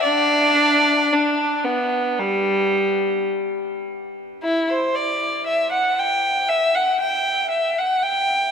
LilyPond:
\new Staff \with { instrumentName = "Violin" } { \time 4/4 \key g \major \tempo 4 = 56 <d' d''>4 d'8 b8 g4 r4 | e'16 c''16 d''8 e''16 fis''16 g''8 e''16 fis''16 g''8 e''16 fis''16 g''8 | }